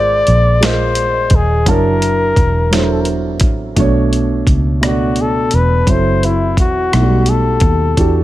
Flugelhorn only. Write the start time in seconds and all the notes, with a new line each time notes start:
Already playing: D5
0.65 C5
1.35 G#4
1.70 A#4
2.74 C5
2.84 A#4
2.93 A4
3.01 A#4
4.87 F#4
5.21 A4
5.55 B4
5.90 C5
6.25 E4
6.60 F#4
7.30 A4